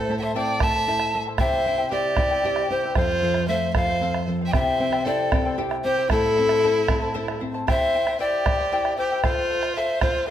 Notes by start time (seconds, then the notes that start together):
Already playing: A2 A4 C5
0.09 A3 E4 C5 E5 A5
0.19 C5 E5 G5 A5
0.23 E4 C5
0.35 C4 E4 A4 C5 D5 E5 G5 A5
0.48 bombo rim
0.60 A3 E4 C5 E5 A5, bombo rim, bombo low
0.75 E4 C5 A5
0.88 E4 A4 C5 E5 A5
1.00 bombo rim
1.15 A3 E4 C5 E5 A5
1.27 E4 C5 A5
1.38 C3 E4 G4 C5 E5 G5, bombo rim, bombo low
1.65 E4 C5 E5 G5
1.78 E4 C5 G5
1.91 E4 G4 C5 D5 E5 G5
2.17 E4 C5 E5 G5, bombo rim, bombo low
2.30 E4 C5 G5
2.44 E4 G4 C5 E5 G5, bombo rim
2.56 bombo rim
2.70 E4 G4 C5 E5 G5
2.84 E4 C5 G5
2.95 F2 F4 A4 C5 F5, bombo rim, bombo low
3.22 F3 A4 C5 F5
3.34 C5 F5, bombo rim
3.48 A3 A4 C5 E5 F5
3.74 F3 A4 C5 F5, bombo rim, bombo low
3.89 C5 F5
4.01 C4 A4 C5 F5, bombo rim
4.14 bombo rim
4.27 F3 A4 C5 F5
4.41 C5 F5
4.45 E5 G5
4.53 C3 E4 G4 C5 E5 G5, bombo rim, bombo low
4.79 C4 E4 C5 E5 G5
4.92 E4 C5 G5, bombo rim
5.05 E4 G4 A4 C5 D5 E5 G5
5.32 C4 E4 C5 E5 G5, bombo rim, bombo low
5.45 E4 C5 G5
5.58 E4 G4 C5 E5 G5, bombo rim
5.71 bombo rim
5.84 C4 E4 G4 C5 E5 G5
5.98 E4 C5 G5
6.10 A2 E4 A4 C5 E5 A5, bombo rim, bombo low
6.24 bombo rim
6.36 C4 E4 C5 E5 A5, bombo rim
6.49 E4 C5 A5, bombo rim
6.64 E4 A4 C5 E5 A5
6.76 bombo rim
6.88 C4 E4 C5 E5 A5, bombo rim, bombo low
7.02 E4 C5 A5, bombo rim
7.14 E4 A4 C5 E5 A5
7.28 bombo rim
7.40 C4 E4 C5 E5 A5
7.54 E4 C5 A5, bombo rim
7.67 E4 G4 C5 E5 G5, bombo rim, bombo low
7.93 E4 C5 E5 G5
8.07 E4 C5 G5, bombo rim
8.19 E4 G4 C5 D5 E5 G5
8.45 E4 C5 E5 G5, bombo rim, bombo low
8.59 E4 C5 G5
8.72 E4 G4 C5 E5 G5, bombo rim
8.85 bombo rim
8.98 E4 G4 C5 E5 G5
9.12 E4 C5 G5
9.24 F4 A4 C5 F5, bombo rim, bombo low
9.50 A4 C5 F5
9.63 C5 F5, bombo rim
9.75 A4 C5 E5 F5
10.01 F4 A4 C5 F5, bombo rim, bombo low
10.16 C5
10.27 A4